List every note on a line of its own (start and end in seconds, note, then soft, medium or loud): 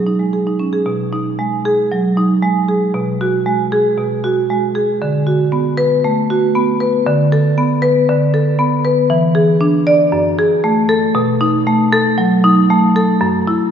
0.00 0.14 G#4 soft
0.07 0.28 D#4 soft
0.20 0.41 G#3 soft
0.33 0.54 G#4 soft
0.47 0.68 D#4 soft
0.59 0.73 C#4 soft
0.73 0.86 G#4 soft
0.86 1.88 B2 medium
1.13 1.55 D#4 medium
1.39 1.80 G#3 medium
1.65 2.06 G#4 medium
1.92 2.32 F#3 medium
2.17 2.58 D#4 medium
2.43 2.84 G#3 medium
2.69 2.94 G#4 medium
2.94 3.94 B2 medium
3.21 3.62 F#4 medium
3.46 3.87 G#3 medium
3.72 4.13 G#4 medium
3.98 4.98 B2 medium
4.24 4.65 F#4 medium
4.50 4.91 G#3 medium
4.75 5.01 G#4 medium
5.02 6.02 D3 medium
5.27 5.68 F#4 medium
5.52 5.94 B3 medium
5.77 6.19 B4 medium
6.04 6.46 A3 medium
6.30 6.71 F#4 medium
6.55 6.96 B3 medium
6.80 7.07 B4 medium
7.07 8.06 D3 medium
7.32 7.73 A4 medium
7.58 7.99 B3 medium
7.82 8.23 B4 medium
8.09 9.07 D3 medium
8.34 8.75 A4 medium
8.59 9.00 B3 medium
8.85 9.10 B4 medium
9.10 10.10 E3 medium
9.35 9.77 G#4 medium
9.61 10.02 D4 medium
9.87 10.13 D5 loud
10.12 11.12 F#2 loud
10.39 10.79 G#4 medium
10.64 11.05 A3 medium
10.89 11.15 A4 loud
11.15 12.15 B2 medium
11.41 11.82 D#4 medium
11.67 12.08 A3 medium
11.93 12.34 A4 loud
12.18 12.59 F#3 medium
12.44 12.85 D#4 medium
12.70 13.11 A3 medium
12.96 13.22 A4 medium
13.21 13.71 F#2 medium
13.47 13.71 E4 medium